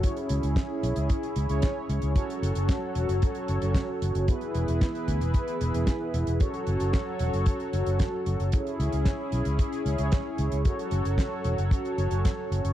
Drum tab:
HH |xxxxx-xxxxxxx-xx|xxxxx-xxxxxxx-xx|xxxxxxxxxxxxx-xx|xxxxx-xxxxxxx-xx|
SD |----o-------o---|----o-------o---|----o-------o---|----o-------o---|
BD |o---o---o---o---|o---o---o---o---|o---o-o-o---o---|o---o---o---o---|

HH |xxxxx-xxxxxxx-xx|xxxxx-xxxxxxx-xx|
SD |----o-------o---|----o-------o---|
BD |o---o---o---o---|o---o---o---o---|